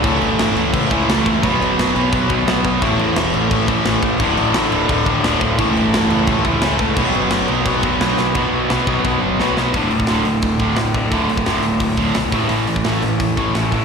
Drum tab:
CC |x-x-x-x-x-x-x-x-|x-x-x-x-x-x-x-x-|x-x-x-x-x-x-x-x-|x-x-x-x-x-x-x-x-|
HH |----------------|----------------|----------------|----------------|
SD |----o-------o---|----o-------o---|----o-------o---|----o-------o---|
BD |o-------o-o---o-|o-------o-o---o-|o-------o-o---o-|o-------o-o---o-|

CC |x-x-x-x-x-x-x-x-|x-x-x-x-x-x-x---|x---x---x-------|----------------|
HH |----------------|----------------|----------------|o-o-o-o-o-o-o-o-|
SD |----o-------o---|----o-------o-o-|----o-------o-o-|----o-------o---|
BD |o-------o-o---o-|o-------o-o-----|o-----o-o-------|o--o----o-o---o-|

CC |----------------|----------------|
HH |o-o-o-o-o-o-o-o-|o-o-o-o-o-o-o-o-|
SD |----o-------o---|----o-------o---|
BD |o--o----o-o---o-|---o----o-o---o-|